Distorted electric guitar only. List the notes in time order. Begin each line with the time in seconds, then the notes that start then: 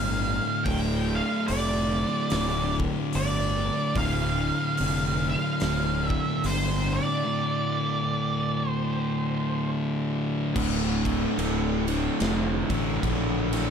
Already playing: D2 A2 D3
0.65 D2 A2 D3
3.95 D2 A2 D3
7.26 D2 A2 D3
10.55 D2 A2 D3